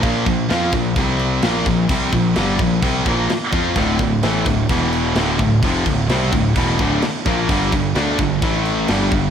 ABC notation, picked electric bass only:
X:1
M:4/4
L:1/8
Q:1/4=129
K:Dm
V:1 name="Picked electric bass" clef=bass
B,,, B,,, F,, B,,, C,,2 B,,, B,,, | C,, B,,, G,,, B,,, C,, B,,, z F,, | D,,, D,,, A,,, D,,, E,,,2 D,,, D,,, | F,,, D,,, C,, D,,, E,,, D,,, z B,,, |
G,,, G,,, D,, G,,, A,,,2 G,,, G,,, |]